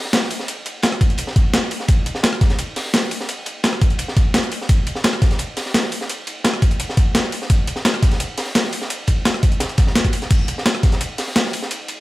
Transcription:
0.05 snare soft
0.13 snare loud
0.13 closed hi-hat loud
0.13 ride loud
0.13 ride medium
0.22 snare soft
0.30 open hi-hat medium
0.30 ride medium
0.39 snare medium
0.48 closed hi-hat loud
0.48 ride medium
0.66 closed hi-hat medium
0.66 ride medium
0.82 snare loud
0.82 closed hi-hat medium
0.82 ride medium
0.92 cross-stick medium
1.01 kick loud
1.01 closed hi-hat medium
1.01 ride medium
1.10 closed hi-hat soft
1.18 closed hi-hat loud
1.18 ride medium
1.27 snare soft
1.36 kick loud
1.36 closed hi-hat medium
1.36 ride medium
1.54 snare loud
1.54 closed hi-hat loud
1.54 ride medium
1.63 snare soft
1.71 open hi-hat medium
1.71 ride medium
1.80 snare soft
1.88 kick loud
1.88 closed hi-hat medium
1.88 ride medium
2.06 closed hi-hat medium
2.06 ride medium
2.15 snare medium
2.23 snare loud
2.23 closed hi-hat medium
2.23 ride medium
2.23 ride loud
2.32 cross-stick medium
2.32 ride soft
2.41 kick loud
2.41 snare soft
2.41 closed hi-hat medium
2.41 ride medium
2.50 snare soft
2.50 closed hi-hat soft
2.59 closed hi-hat medium
2.59 ride loud
2.59 ride medium
2.76 snare medium
2.76 closed hi-hat medium
2.76 open hi-hat medium
2.76 ride medium
2.85 snare soft
2.94 snare loud
2.94 closed hi-hat medium
2.94 ride medium
2.94 ride loud
3.03 snare soft
3.11 open hi-hat medium
3.11 ride medium
3.21 snare medium
3.29 closed hi-hat medium
3.29 ride loud
3.29 ride medium
3.46 closed hi-hat medium
3.46 ride medium
3.64 snare loud
3.64 closed hi-hat medium
3.64 ride medium
3.73 cross-stick medium
3.81 kick loud
3.81 closed hi-hat medium
3.81 ride medium
3.90 closed hi-hat soft
3.99 closed hi-hat medium
3.99 ride medium
4.08 snare medium
4.17 kick loud
4.17 closed hi-hat medium
4.17 ride medium
4.34 snare loud
4.34 closed hi-hat medium
4.34 ride medium
4.43 snare soft
4.43 closed hi-hat soft
4.52 open hi-hat medium
4.52 ride soft
4.52 ride medium
4.61 snare soft
4.69 kick loud
4.69 closed hi-hat loud
4.69 ride medium
4.87 closed hi-hat medium
4.87 ride medium
4.95 snare medium
5.04 snare loud
5.04 closed hi-hat medium
5.04 ride medium
5.13 cross-stick medium
5.13 ride soft
5.22 kick loud
5.22 snare soft
5.22 closed hi-hat medium
5.22 ride medium
5.31 snare soft
5.31 closed hi-hat soft
5.39 closed hi-hat medium
5.39 ride medium
5.57 snare medium
5.57 closed hi-hat medium
5.57 open hi-hat medium
5.57 ride medium
5.66 snare soft
5.74 snare loud
5.74 closed hi-hat medium
5.74 ride medium
5.83 snare soft
5.92 open hi-hat medium
5.92 ride medium
6.01 snare medium
6.10 closed hi-hat medium
6.10 ride medium
6.27 closed hi-hat medium
6.27 ride medium
6.44 snare loud
6.44 closed hi-hat medium
6.44 ride medium
6.44 ride loud
6.54 cross-stick medium
6.62 kick loud
6.62 closed hi-hat medium
6.62 ride medium
6.71 closed hi-hat soft
6.80 closed hi-hat medium
6.80 ride medium
6.89 snare medium
6.97 kick loud
6.97 closed hi-hat medium
6.97 ride medium
7.15 snare loud
7.15 closed hi-hat medium
7.15 ride medium
7.24 snare soft
7.32 open hi-hat medium
7.32 ride medium
7.42 snare soft
7.50 kick loud
7.50 closed hi-hat medium
7.50 ride medium
7.67 closed hi-hat medium
7.67 ride medium
7.76 snare medium
7.85 snare loud
7.85 closed hi-hat medium
7.85 ride medium
7.85 ride loud
7.94 cross-stick medium
7.94 ride soft
8.03 kick loud
8.03 snare soft
8.03 closed hi-hat medium
8.03 ride medium
8.12 snare soft
8.12 closed hi-hat soft
8.20 closed hi-hat loud
8.20 ride loud
8.20 ride medium
8.38 snare medium
8.38 closed hi-hat medium
8.38 open hi-hat medium
8.38 ride medium
8.46 snare soft
8.55 snare loud
8.55 closed hi-hat medium
8.55 ride medium
8.64 snare medium
8.73 open hi-hat medium
8.73 ride medium
8.82 snare medium
8.90 closed hi-hat loud
8.90 ride loud
8.90 ride medium
9.07 kick medium
9.07 closed hi-hat medium
9.07 ride medium
9.25 snare loud
9.25 closed hi-hat loud
9.25 ride medium
9.34 cross-stick medium
9.43 kick loud
9.43 closed hi-hat medium
9.43 ride medium
9.52 closed hi-hat soft
9.60 snare loud
9.60 closed hi-hat loud
9.60 ride medium
9.69 closed hi-hat soft
9.69 ride soft
9.77 kick loud
9.77 snare soft
9.77 closed hi-hat medium
9.77 ride medium
9.87 snare soft
9.95 snare loud
9.95 closed hi-hat loud
9.95 ride medium
10.04 kick medium
10.04 cross-stick soft
10.04 closed hi-hat soft
10.13 open hi-hat medium
10.13 ride medium
10.22 snare soft
10.22 closed hi-hat soft
10.31 kick loud
10.31 closed hi-hat loud
10.31 crash medium
10.31 ride medium
10.31 ride loud
10.48 closed hi-hat medium
10.48 ride medium
10.58 snare medium
10.66 snare loud
10.66 closed hi-hat medium
10.66 ride medium
10.66 ride loud
10.74 cross-stick medium
10.74 ride soft
10.83 kick loud
10.83 snare soft
10.83 closed hi-hat medium
10.83 ride medium
10.92 snare soft
10.92 closed hi-hat soft
11.01 closed hi-hat loud
11.01 ride medium
11.18 snare medium
11.18 closed hi-hat medium
11.18 open hi-hat medium
11.18 ride medium
11.28 snare soft
11.36 snare loud
11.36 closed hi-hat medium
11.36 ride medium
11.46 snare soft
11.53 open hi-hat medium
11.53 ride medium
11.62 snare medium
11.71 closed hi-hat medium
11.71 ride medium
11.71 ride loud
11.88 closed hi-hat medium
11.88 ride medium

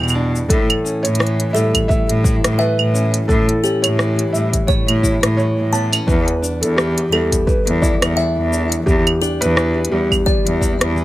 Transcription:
0.00 0.50 E2 medium
0.00 0.45 B2 medium
0.00 1.19 E3 medium
0.00 0.88 G3 medium
0.00 0.14 D4 medium
0.00 2.24 E4 medium
0.00 0.11 G5 loud
0.00 claves soft
0.08 claves medium
0.08 shaker medium
0.15 0.58 D4 medium
0.36 shaker soft
0.49 0.65 A2 loud
0.49 1.88 A2 medium
0.49 1.05 A4 medium
0.49 kick loud
0.49 closed hi-hat medium
0.49 shaker soft
0.70 closed hi-hat soft
0.70 claves medium
0.85 2.93 C#4 medium
0.85 shaker medium
1.03 1.50 A2 medium
1.03 1.55 C#5 loud
1.03 closed hi-hat medium
1.03 shaker soft
1.15 closed hi-hat soft
1.19 2.59 E3 medium
1.19 cross-stick medium
1.19 shaker soft
1.27 closed hi-hat soft
1.40 closed hi-hat soft
1.53 1.70 A2 medium
1.53 4.33 G3 medium
1.53 1.88 A4 medium
1.53 1.87 E5 loud
1.53 shaker medium
1.74 kick medium
1.74 closed hi-hat medium
1.74 claves medium
1.74 shaker soft
1.88 3.28 A2 medium
1.88 2.61 E5 loud
1.88 kick loud
1.88 shaker soft
2.09 2.36 A2 medium
2.09 closed hi-hat soft
2.24 5.03 E4 medium
2.24 kick loud
2.24 shaker medium
2.44 2.56 A2 loud
2.44 cross-stick medium
2.44 closed hi-hat medium
2.44 shaker soft
2.58 3.99 E3 medium
2.58 3.09 B4 loud
2.58 2.92 E5 loud
2.58 shaker soft
2.79 3.24 A2 medium
2.79 claves medium
2.94 3.63 C#4 medium
2.94 shaker medium
3.14 closed hi-hat medium
3.14 shaker soft
3.28 3.44 A2 loud
3.28 4.67 A2 medium
3.28 3.85 A4 loud
3.28 kick loud
3.28 shaker soft
3.49 closed hi-hat soft
3.64 5.73 C#4 medium
3.64 3.97 G4 medium
3.64 shaker medium
3.82 4.29 A2 medium
3.82 4.29 C#5 medium
3.82 closed hi-hat medium
3.82 claves medium
3.82 shaker soft
3.99 5.38 E3 medium
3.99 cross-stick medium
3.99 shaker soft
4.19 closed hi-hat soft
4.33 4.49 A2 medium
4.33 7.12 G3 medium
4.33 4.69 E5 medium
4.33 shaker medium
4.53 kick medium
4.53 closed hi-hat medium
4.53 shaker soft
4.67 6.08 A2 medium
4.67 5.34 C#5 loud
4.67 4.90 C#5 medium
4.67 kick loud
4.67 shaker soft
4.88 5.15 A2 medium
4.88 closed hi-hat soft
4.88 claves medium
5.03 6.45 E4 medium
5.03 kick medium
5.03 shaker medium
5.23 5.35 A2 loud
5.23 cross-stick medium
5.23 closed hi-hat medium
5.23 shaker soft
5.37 6.45 E3 medium
5.37 5.88 C#5 loud
5.37 shaker soft
5.58 6.03 A2 medium
5.73 5.92 B3 medium
5.73 6.06 A5 medium
5.73 shaker medium
5.92 6.16 C#4 medium
5.92 closed hi-hat medium
5.92 claves medium
5.92 shaker soft
6.07 7.46 E2 loud
6.07 6.24 E2 loud
6.07 6.58 B4 medium
6.07 kick loud
6.07 shaker soft
6.28 closed hi-hat soft
6.42 8.51 D4 medium
6.42 shaker medium
6.61 7.08 E2 medium
6.61 6.76 A4 medium
6.61 closed hi-hat medium
6.61 shaker soft
6.76 8.17 E3 medium
6.76 7.49 G4 loud
6.76 cross-stick medium
6.76 shaker soft
6.98 closed hi-hat soft
7.12 7.28 E2 medium
7.12 9.91 G3 medium
7.12 7.46 A4 medium
7.12 claves medium
7.32 kick medium
7.32 closed hi-hat medium
7.32 shaker medium
7.47 8.86 E2 medium
7.47 7.83 B4 medium
7.47 kick loud
7.47 shaker soft
7.67 7.94 E2 medium
7.67 closed hi-hat soft
7.82 10.61 E4 medium
7.82 8.48 D5 medium
7.82 kick loud
7.82 shaker medium
8.02 8.14 E2 loud
8.02 cross-stick medium
8.02 closed hi-hat medium
8.02 claves medium
8.02 shaker soft
8.17 9.56 E3 medium
8.17 8.50 E5 loud
8.17 shaker soft
8.37 8.82 E2 medium
8.52 9.21 D4 medium
8.52 shaker medium
8.72 closed hi-hat medium
8.72 shaker soft
8.86 9.02 E2 medium
8.86 10.25 E2 medium
8.86 9.43 G4 loud
8.86 kick loud
8.86 shaker soft
9.07 closed hi-hat soft
9.07 claves medium
9.22 11.04 D4 medium
9.22 9.55 G4 medium
9.22 shaker medium
9.41 9.87 E2 medium
9.41 9.93 B4 loud
9.41 closed hi-hat medium
9.41 shaker soft
9.57 10.96 E3 medium
9.57 cross-stick medium
9.57 shaker soft
9.85 closed hi-hat soft
9.91 10.07 E2 medium
9.91 11.04 G3 medium
9.91 10.92 G4 medium
10.11 kick medium
10.11 claves medium
10.11 shaker soft
10.26 11.04 E2 medium
10.26 10.48 D5 medium
10.26 kick loud
10.26 shaker soft
10.46 10.73 E2 medium
10.46 closed hi-hat soft
10.61 11.04 E4 medium
10.61 kick medium
10.61 shaker medium
10.81 10.93 E2 loud
10.81 cross-stick medium
10.81 closed hi-hat medium
10.96 11.04 E3 medium
10.96 shaker soft

